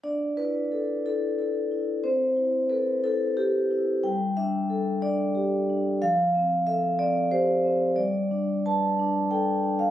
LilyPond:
\new Staff \with { instrumentName = "Vibraphone" } { \time 3/4 \key d \dorian \tempo 4 = 91 << { d''8 b'4 a'4. | c''4 b'8 a'8 g'4 | g''8 e''4 d''4. | f''4 e''8 d''8 c''4 |
d''4 a''4 g''8. f''16 | } \\ { d'8 e'8 a'8 e'8 a'8 e'8 | c'8 e'8 a'8 e'8 a'8 e'8 | g8 d'8 a'8 d'8 g'8 d'8 | f8 c'8 a'8 c'8 g'8 c'8 |
g8 d'8 b'8 d'8 a'8 d'8 | } >> }